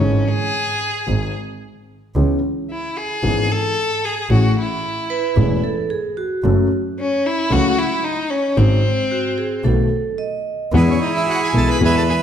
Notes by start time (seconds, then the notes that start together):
Already playing: C#4
0.00 G#1 G#2 E3 G#3 C#4 G#4
0.29 G#4
1.06 G#1 G#2 D#3 G#3 C4 G#4
2.15 C#2 C#3 E3 B3 C#4 G#4
2.71 E4
2.97 G#4
3.23 G#1 G#2 E3 B3 C#4 G#4
3.52 A4
4.05 G#4
4.29 A1 A2 E3 A3 C#4 F#4 G#4
4.59 E4
5.10 B4
5.36 E1 E2 E3 A3 C#4 G#4
5.64 A4
5.90 G#4
6.17 F#4
6.43 F#1 F#2 F#3 A3 C#4 A4
7.00 C#4
7.26 E4
7.50 C#2 C#3 F#3 A3 C#4 F#4 A4
7.79 E4
8.04 D#4
8.30 C#4
8.57 G#1 G#2 D#3 G#3 C4 F#4
9.11 F#4
9.38 G#4
9.64 B1 B2 D#3 A3 B3 F#4 A4
10.18 D#5
10.72 E2 E3 G#3 B3 E4 G#4
10.77 B4
10.87 C#4 C#5
11.01 D#4 D#5
11.15 E4 E5
11.28 F#4 F#5
11.42 G#4 G#5
11.53 B1 B2 E3 G#3 B3 G#4 A4 A5
11.70 B4 B5
11.80 E2 E3 G#3 B3 G#4
11.85 B4 E5 G#5
11.96 A4 A5
12.09 G#4 G#5